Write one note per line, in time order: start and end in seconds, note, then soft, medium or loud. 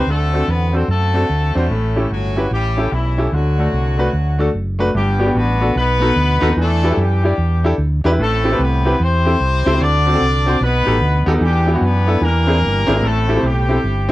0.07 0.42 D2 medium
0.07 0.70 D3 medium
0.07 0.49 A3 medium
0.07 0.75 C4 medium
0.07 0.86 F#4 medium
0.07 0.49 A4 loud
0.33 0.41 C4 medium
0.33 0.41 D4 medium
0.33 0.42 F#4 medium
0.33 0.42 A4 medium
0.48 0.83 E2 medium
0.48 0.74 B3 medium
0.48 0.74 B4 loud
0.73 0.81 C4 medium
0.73 0.89 C4 medium
0.73 0.82 D4 medium
0.73 0.82 F#4 medium
0.73 0.82 A4 medium
0.73 0.89 C5 medium
0.88 1.23 F#2 medium
0.88 1.52 A3 medium
0.88 1.67 C4 medium
0.88 1.67 F#4 medium
0.88 1.52 A4 loud
1.14 1.22 C4 medium
1.14 1.22 D4 medium
1.14 1.23 F#4 medium
1.14 1.23 A4 medium
1.29 1.52 D2 medium
1.55 1.68 E2 medium
1.55 2.07 A3 medium
1.55 1.63 C4 medium
1.55 2.10 C#4 medium
1.55 1.63 D4 medium
1.55 2.33 E4 medium
1.55 1.64 F#4 medium
1.55 2.07 A4 medium
1.55 1.64 C5 medium
1.70 2.04 A1 loud
1.70 2.33 A2 medium
1.96 2.04 C#4 medium
1.96 2.04 E4 medium
1.96 2.04 G4 medium
1.96 2.05 A4 medium
2.11 2.45 G1 medium
2.11 2.49 F#3 medium
2.11 2.51 C#4 medium
2.11 2.49 F#4 medium
2.36 2.44 C#4 medium
2.36 2.45 E4 medium
2.36 2.45 G4 medium
2.36 2.45 B4 medium
2.51 2.86 A1 medium
2.51 2.90 G3 medium
2.51 2.91 C#4 medium
2.51 2.91 E4 medium
2.51 2.90 G4 medium
2.77 2.85 C#4 medium
2.77 2.85 E4 medium
2.77 2.86 G4 medium
2.77 2.86 A4 medium
2.92 3.27 B1 loud
2.92 3.33 E3 medium
2.92 3.30 G3 medium
2.92 3.30 C#4 medium
2.92 3.33 E4 medium
3.18 3.26 C#4 medium
3.18 3.26 E4 medium
3.18 3.26 G4 medium
3.18 3.26 A4 medium
3.32 3.67 D2 medium
3.32 3.96 D3 medium
3.32 4.55 F#3 medium
3.32 4.50 A3 medium
3.32 4.51 D4 medium
3.32 4.55 F#4 medium
3.58 3.66 A3 medium
3.58 3.66 D4 medium
3.58 3.67 F#4 medium
3.58 3.67 A4 medium
3.73 4.07 C2 medium
3.98 4.06 A3 medium
3.98 4.07 D4 medium
3.98 4.07 F#4 medium
3.98 4.07 B4 medium
4.13 4.48 D2 medium
4.38 4.47 A3 medium
4.38 4.47 D4 medium
4.38 4.47 F#4 medium
4.38 4.48 A4 medium
4.54 4.88 F#1 medium
4.79 4.87 A3 medium
4.79 4.88 D4 medium
4.79 4.88 F#4 medium
4.79 4.88 B4 medium
4.95 5.29 G1 loud
4.95 5.57 G2 medium
4.95 5.33 G3 medium
4.95 5.36 B3 medium
4.95 5.35 D4 medium
4.95 5.33 G4 loud
5.19 5.24 B3 medium
5.19 5.24 D4 medium
5.19 5.25 F#4 medium
5.19 5.25 G4 medium
5.26 5.35 B3 medium
5.26 5.36 D4 medium
5.26 5.36 F#4 medium
5.26 5.36 G4 medium
5.35 5.70 A1 medium
5.35 5.76 B3 loud
5.35 5.74 D4 medium
5.35 5.73 F#4 medium
5.35 5.76 B4 loud
5.60 5.69 B3 medium
5.60 5.69 D4 medium
5.60 5.69 F#4 medium
5.60 5.70 A4 medium
5.75 6.10 B1 loud
5.75 6.38 B2 medium
5.75 6.54 B3 loud
5.75 6.53 D#4 medium
5.75 6.53 F#4 medium
5.75 6.54 B4 loud
6.00 6.09 B3 medium
6.00 6.09 D#4 medium
6.00 6.10 F#4 medium
6.00 6.10 A4 medium
6.16 6.38 D2 loud
6.41 6.55 D#2 medium
6.41 6.45 B3 medium
6.41 6.46 D#4 medium
6.41 6.46 F#4 medium
6.41 6.47 A4 loud
6.49 6.57 B3 medium
6.49 6.57 D#4 medium
6.49 6.57 F#4 medium
6.49 6.58 B4 medium
6.57 6.91 E2 medium
6.57 7.20 E3 medium
6.57 6.99 A3 loud
6.57 6.97 D4 medium
6.57 6.99 A4 loud
6.83 6.87 D4 medium
6.83 6.87 E4 medium
6.83 6.88 G4 medium
6.83 6.88 B4 medium
6.90 6.99 D4 medium
6.90 6.99 E4 medium
6.90 6.99 G4 medium
6.90 6.99 A4 medium
6.97 7.32 F#2 medium
6.97 7.75 G3 medium
6.97 7.75 B3 medium
6.97 7.75 D4 medium
6.97 7.75 G4 medium
7.24 7.31 D4 medium
7.24 7.32 E4 medium
7.24 7.32 G4 medium
7.24 7.32 D5 medium
7.38 7.72 E2 medium
7.64 7.72 D4 medium
7.64 7.72 E4 medium
7.64 7.72 G4 medium
7.64 7.73 A4 medium
7.78 8.00 D2 loud
8.04 8.17 E2 medium
8.04 8.08 D4 loud
8.04 8.09 E4 medium
8.04 8.09 G4 medium
8.04 8.09 B4 loud
8.11 8.19 D4 medium
8.11 8.19 E4 medium
8.11 8.19 G4 medium
8.11 8.20 B4 medium
8.18 8.53 A1 loud
8.18 8.82 A2 medium
8.18 8.57 A3 loud
8.18 8.96 C4 medium
8.18 8.59 E4 medium
8.18 8.57 A4 loud
8.44 8.48 C4 medium
8.44 8.49 E4 medium
8.44 8.49 G4 medium
8.44 8.49 A4 medium
8.51 8.60 C4 medium
8.51 8.60 E4 medium
8.51 8.60 G4 medium
8.51 8.61 B4 medium
8.59 8.94 C2 medium
8.59 9.01 B3 medium
8.59 9.00 E4 medium
8.59 9.00 G4 medium
8.59 9.01 B4 medium
8.85 8.93 C4 medium
8.85 8.93 E4 medium
8.85 8.94 G4 medium
8.85 8.94 B4 medium
9.00 9.34 E2 medium
9.00 9.82 C4 loud
9.00 9.77 E4 medium
9.00 9.77 G4 medium
9.00 9.82 C5 loud
9.25 9.33 C4 medium
9.25 9.34 E4 medium
9.25 9.34 G4 medium
9.25 9.34 A4 medium
9.40 9.62 C2 loud
9.66 9.79 C#2 medium
9.66 9.70 C4 medium
9.66 9.70 E4 medium
9.66 9.70 G4 medium
9.66 9.71 A4 medium
9.73 9.80 C4 medium
9.73 9.81 E4 medium
9.73 9.81 G4 medium
9.80 10.15 D2 loud
9.80 10.43 D3 medium
9.80 10.62 D4 loud
9.80 10.57 F#4 medium
9.80 10.57 A4 medium
9.80 10.62 D5 loud
10.06 10.10 C4 medium
10.06 10.11 D4 medium
10.06 10.11 F#4 medium
10.06 10.11 A4 medium
10.13 10.22 C4 medium
10.13 10.22 D4 medium
10.13 10.22 F#4 medium
10.13 10.22 A4 medium
10.21 10.55 C2 medium
10.46 10.54 C4 medium
10.46 10.55 D4 medium
10.46 10.55 F#4 medium
10.46 10.55 C5 medium
10.61 10.83 B1 medium
10.61 11.24 B2 medium
10.61 11.24 B3 loud
10.61 11.38 D#4 medium
10.61 11.38 F#4 medium
10.61 11.24 B4 loud
10.85 10.99 A1 medium
10.85 10.94 B3 medium
10.85 10.94 D#4 medium
10.85 10.95 G4 medium
10.85 10.95 A4 medium
11.01 11.23 D2 medium
11.26 11.39 D#2 loud
11.26 11.31 B3 medium
11.26 11.31 D#4 medium
11.26 11.31 G4 medium
11.26 11.32 A4 loud
11.33 11.41 B3 medium
11.33 11.41 D#4 medium
11.33 11.42 G4 medium
11.33 11.42 A4 medium
11.41 11.76 E2 loud
11.41 12.04 E3 medium
11.41 11.80 G3 medium
11.41 11.84 B3 medium
11.41 11.81 D4 medium
11.41 11.80 G4 medium
11.66 11.71 B3 medium
11.66 11.71 D4 medium
11.66 11.71 E4 medium
11.66 11.72 G4 medium
11.74 11.82 B3 medium
11.74 11.83 D4 medium
11.74 11.83 E4 medium
11.74 11.83 F#4 medium
11.81 12.16 F#2 medium
11.81 12.23 B3 medium
11.81 12.20 D4 medium
11.81 12.19 G4 medium
11.81 12.23 B4 medium
12.06 12.15 B3 medium
12.06 12.15 D4 medium
12.06 12.15 E4 medium
12.06 12.16 A4 medium
12.21 12.63 E2 loud
12.21 12.84 E3 medium
12.21 13.03 A#3 loud
12.21 12.99 D4 medium
12.21 12.99 G4 medium
12.21 13.03 A#4 loud
12.47 12.55 C4 medium
12.47 12.55 D4 medium
12.47 12.56 E4 medium
12.47 12.56 G#4 medium
12.62 12.84 G1 loud
12.87 13.00 G#1 medium
12.87 12.91 C4 loud
12.87 12.92 D4 medium
12.87 12.92 E4 medium
12.87 12.92 G#4 medium
12.94 13.02 C4 medium
12.94 13.02 D4 medium
12.94 13.03 E4 medium
12.94 13.03 G#4 medium
13.02 13.37 A1 loud
13.02 13.65 A2 medium
13.02 13.44 A3 medium
13.02 13.43 C4 medium
13.02 13.43 E4 medium
13.02 13.44 A4 medium
13.28 13.32 C4 medium
13.28 13.33 E4 medium
13.28 13.33 G4 medium
13.28 13.33 A4 medium
13.36 13.44 C4 medium
13.36 13.44 E4 medium
13.36 13.44 G4 medium
13.36 13.45 C5 medium
13.43 13.77 B1 medium
13.43 14.12 G3 medium
13.43 14.12 C4 medium
13.43 14.12 E4 medium
13.43 14.12 G4 medium
13.69 13.76 C4 medium
13.69 13.77 E4 medium
13.69 13.77 G4 medium
13.69 13.77 A4 medium
13.84 14.12 G1 medium
14.09 14.12 C4 medium